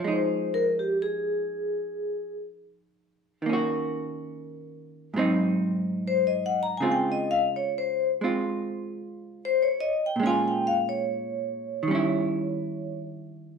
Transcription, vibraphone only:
0.12 0.64 C5 medium
0.54 0.71 A#4 medium
0.79 0.91 G4 medium
1.02 2.35 G#4 medium
6.08 6.31 C5 medium
6.27 6.55 D#5 medium
6.46 6.50 F#5 loud
6.63 6.77 A#5 loud
6.77 6.84 G#5 medium
6.91 7.15 G5 medium
7.12 7.39 D#5 medium
7.31 7.48 F5 loud
7.56 7.68 C#5 medium
7.78 8.09 C5 medium
9.45 9.68 C5 medium
9.62 9.91 C#5 medium
9.81 9.99 D#5 medium
10.06 10.19 G5 medium
10.26 10.51 G#5 medium
10.48 10.76 G5 medium
10.67 10.85 F5 medium
10.89 13.01 C#5 medium

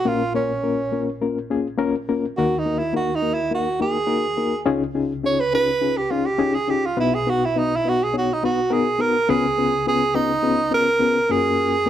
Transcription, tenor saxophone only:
0.07 0.35 F4 loud
0.35 1.17 C#4 medium
2.37 2.60 F#4 medium
2.59 2.80 D#4 medium
2.79 2.96 E4 medium
2.96 3.17 F#4 medium
3.15 3.35 D#4 medium
3.34 3.52 E4 medium
3.54 3.80 F#4 medium
3.82 4.64 G#4 loud
5.26 5.42 C#5 loud
5.40 5.54 B4 loud
5.55 5.99 B4 loud
5.97 6.12 G4 loud
6.11 6.28 F4 medium
6.26 6.56 G4 loud
6.54 6.71 G#4 loud
6.70 6.87 G4 loud
6.86 6.99 F4 medium
7.00 7.16 E4 medium
7.14 7.31 G#4 medium
7.30 7.46 F#4 medium
7.45 7.60 E4 medium
7.59 7.78 D#4 medium
7.76 7.90 E4 loud
7.89 8.06 F#4 loud
8.04 8.16 G#4 medium
8.18 8.35 F#4 medium
8.33 8.44 D#4 medium
8.45 8.75 F#4 medium
8.73 9.03 G#4 loud
9.01 9.32 A#4 loud
9.30 9.87 G#4 loud
9.88 10.17 G#4 loud
10.15 10.73 D#4 loud
10.74 11.33 A#4 loud
11.31 11.90 G#4 loud

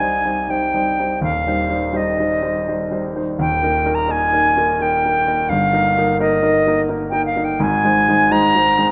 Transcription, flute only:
0.00 0.52 G#5 loud
0.50 1.22 G5 loud
1.24 1.98 F5 loud
1.97 3.05 D#5 medium
3.40 3.96 G5 loud
3.95 4.13 A#5 loud
4.11 4.83 G#5 loud
4.82 5.51 G5 loud
5.49 6.20 F5 loud
6.21 6.81 D#5 loud
7.10 7.25 G5 loud
7.26 7.46 F5 medium
7.44 7.64 G5 loud
7.62 8.33 G#5 loud
8.32 8.91 A#5 loud

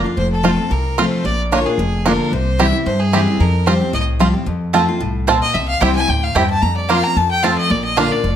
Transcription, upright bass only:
0.17 0.55 F1 medium
0.70 1.09 C2 medium
1.24 1.63 A#1 medium
1.77 2.16 F1 medium
2.32 2.70 C2 medium
2.86 3.24 G2 loud
3.40 3.78 F2 medium
3.93 4.31 C2 medium
4.46 4.85 F2 medium
5.00 5.39 C2 medium
5.54 5.74 C2 medium
5.81 6.04 C2 loud
6.08 6.31 D2 loud
6.35 6.58 E2 medium
6.62 7.00 F2 medium
7.16 7.54 F2 loud
7.70 8.09 A#1 loud
8.23 8.36 F1 medium

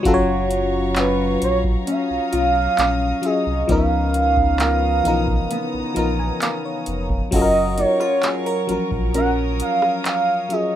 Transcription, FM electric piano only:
0.03 1.49 F#3 loud
0.03 1.50 C#4 loud
0.03 1.51 F4 loud
0.08 0.13 A4 loud
0.14 1.55 C#5 loud
3.22 3.59 F#3 medium
3.22 3.60 C#4 medium
3.22 3.60 F4 medium
3.26 3.61 G#4 medium
3.68 4.77 F3 medium
3.68 4.78 B3 medium
3.68 4.79 D#4 medium
3.72 4.79 A#4 loud
5.03 5.11 E3 medium
5.03 5.78 B3 medium
5.03 5.78 D#4 medium
5.08 5.80 F3 medium
5.08 5.79 A#4 medium
5.94 7.04 F3 medium
5.94 7.05 B3 medium
5.94 7.06 D#4 medium
5.94 6.17 A#5 medium
5.99 7.06 A#4 medium
6.20 6.40 G#5 medium
6.42 6.63 F5 medium
6.65 7.29 C#5 medium
7.31 8.41 F#3 medium
7.31 8.41 C#4 medium
7.31 8.42 F4 medium
7.35 7.40 A4 medium
7.42 8.46 A#4 loud
8.67 10.15 F3 medium
8.67 10.13 F#3 medium
8.67 10.14 C#4 medium
8.72 10.16 A#4 medium
10.49 10.76 F#3 medium
10.49 10.76 C#4 medium
10.49 10.76 F4 medium
10.53 10.76 G#4 medium

